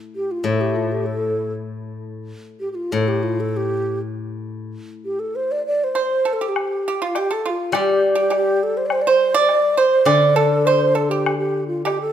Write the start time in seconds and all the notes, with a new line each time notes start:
0.16 G4
0.31 F4
0.44 A2 A4
0.61 G4
0.76 F4
0.92 G4
1.06 A4
2.60 G4
2.72 F4 G4
2.92 A2 A4
3.08 G4
3.23 F4
3.40 A4
3.57 G4
5.05 G4
5.19 A4
5.36 C5
5.52 D5
5.67 D5
5.84 C5
5.95 C5
6.01 C5
6.25 A4
6.33 A4
6.41 G4
6.49 G4
6.56 high woodblock
6.88 G4
7.02 F4
7.15 G4, high woodblock, low woodblock
7.31 A4
7.46 F4
7.50 F4
7.72 G3 G4, high woodblock
7.78 G4
8.15 G4
8.20 G4
8.30 G4, high woodblock, low woodblock
8.36 G4
8.63 A4
8.77 C5
8.86 D5
8.90 C5, high woodblock
9.02 D5
9.07 C5
9.34 D5
9.49 high woodblock, low woodblock
9.77 C5
10.05 D3 D5, high woodblock
10.36 A4
10.65 C5, low woodblock
10.95 A4
11.09 G4
11.26 high woodblock
11.38 G4
11.67 F4
11.85 G4, high woodblock, low woodblock
12.01 A4